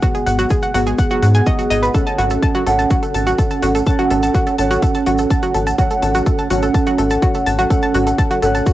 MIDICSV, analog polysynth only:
0, 0, Header, 1, 2, 480
1, 0, Start_track
1, 0, Tempo, 480000
1, 24, Time_signature, 4, 2, 24, 8
1, 8731, End_track
2, 0, Start_track
2, 0, Title_t, "Analog polysynth"
2, 0, Program_c, 0, 90
2, 24, Note_on_c, 0, 59, 84
2, 25, Note_on_c, 0, 68, 80
2, 25, Note_on_c, 0, 78, 94
2, 716, Note_off_c, 0, 59, 0
2, 716, Note_off_c, 0, 68, 0
2, 716, Note_off_c, 0, 78, 0
2, 744, Note_on_c, 0, 59, 89
2, 744, Note_on_c, 0, 68, 82
2, 744, Note_on_c, 0, 78, 97
2, 1916, Note_off_c, 0, 59, 0
2, 1916, Note_off_c, 0, 68, 0
2, 1916, Note_off_c, 0, 78, 0
2, 1945, Note_on_c, 0, 61, 89
2, 1946, Note_on_c, 0, 69, 81
2, 1946, Note_on_c, 0, 78, 94
2, 2637, Note_off_c, 0, 61, 0
2, 2637, Note_off_c, 0, 69, 0
2, 2637, Note_off_c, 0, 78, 0
2, 2664, Note_on_c, 0, 69, 82
2, 2665, Note_on_c, 0, 61, 89
2, 2665, Note_on_c, 0, 78, 97
2, 3836, Note_off_c, 0, 61, 0
2, 3836, Note_off_c, 0, 69, 0
2, 3836, Note_off_c, 0, 78, 0
2, 3865, Note_on_c, 0, 61, 87
2, 3865, Note_on_c, 0, 69, 79
2, 3865, Note_on_c, 0, 78, 97
2, 4556, Note_off_c, 0, 61, 0
2, 4556, Note_off_c, 0, 69, 0
2, 4556, Note_off_c, 0, 78, 0
2, 4585, Note_on_c, 0, 61, 86
2, 4585, Note_on_c, 0, 69, 82
2, 4585, Note_on_c, 0, 78, 93
2, 5756, Note_off_c, 0, 61, 0
2, 5756, Note_off_c, 0, 69, 0
2, 5756, Note_off_c, 0, 78, 0
2, 5783, Note_on_c, 0, 69, 84
2, 5783, Note_on_c, 0, 78, 98
2, 5784, Note_on_c, 0, 61, 84
2, 6476, Note_off_c, 0, 61, 0
2, 6476, Note_off_c, 0, 69, 0
2, 6476, Note_off_c, 0, 78, 0
2, 6504, Note_on_c, 0, 61, 89
2, 6504, Note_on_c, 0, 69, 80
2, 6504, Note_on_c, 0, 78, 96
2, 7676, Note_off_c, 0, 61, 0
2, 7676, Note_off_c, 0, 69, 0
2, 7676, Note_off_c, 0, 78, 0
2, 7704, Note_on_c, 0, 61, 86
2, 7704, Note_on_c, 0, 69, 81
2, 7704, Note_on_c, 0, 78, 98
2, 8396, Note_off_c, 0, 61, 0
2, 8396, Note_off_c, 0, 69, 0
2, 8396, Note_off_c, 0, 78, 0
2, 8424, Note_on_c, 0, 61, 89
2, 8424, Note_on_c, 0, 69, 84
2, 8424, Note_on_c, 0, 78, 102
2, 8731, Note_off_c, 0, 61, 0
2, 8731, Note_off_c, 0, 69, 0
2, 8731, Note_off_c, 0, 78, 0
2, 8731, End_track
0, 0, End_of_file